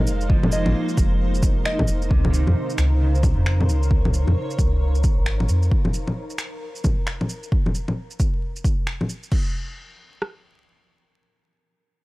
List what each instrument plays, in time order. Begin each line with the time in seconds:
Already playing: clean electric guitar G#3 A#3, ambient pad G#3 D#4 C5 F5, synth texture A#4
0.07 sub bass F1, cabasa, shaker
0.21 shaker
0.30 clean electric guitar F3, kick
0.43 low bongo
0.49 clean electric guitar G#3, soft synth lead D#5, cabasa, shaker
0.63 sub bass G#1, clean electric guitar A#3, low bongo
0.89 shaker
0.97 sub bass F1, kick, cabasa, shaker
1.34 shaker
1.43 kick, cabasa, shaker
1.65 soft synth lead D#5, finger snap
1.79 kick, low bongo
1.88 sub bass F1, cabasa, shaker
2.02 shaker
2.10 sub bass C#2, clean electric guitar C3, synth texture A#4, ambient pad C5, kick
2.25 low bongo
2.30 clean electric guitar D#3, shaker
2.47 sub bass F2, low bongo
2.70 shaker
2.78 sub bass C#2, finger snap, shaker
3.01 clean electric guitar C#3
3.15 shaker
3.23 ambient pad C#5, kick, low bongo, shaker
3.37 sub bass F2
3.46 finger snap
3.60 low bongo
3.68 sub bass C#2, shaker
3.83 shaker
3.91 kick
4.05 low bongo
4.14 shaker
4.27 sub bass F2, low bongo
4.50 shaker
4.58 sub bass C#2, kick, shaker
4.95 shaker
5.04 sub bass G#1, kick, shaker
5.18 sub bass G#1
5.26 finger snap
5.40 low bongo
5.49 sub bass F2, shaker
5.63 shaker
5.72 kick
5.85 low bongo
5.94 shaker
6.07 low bongo
6.30 shaker
6.38 finger snap, shaker
6.75 shaker
6.84 kick, low bongo, shaker
7.07 finger snap
7.21 low bongo
7.29 shaker
7.43 shaker
7.52 kick
7.66 low bongo
7.75 shaker
7.88 low bongo
8.11 shaker
8.20 kick, shaker
8.56 shaker
8.64 kick, shaker
8.87 finger snap
9.01 low bongo
9.09 shaker
9.23 shaker
9.32 kick, crash
10.22 cross-stick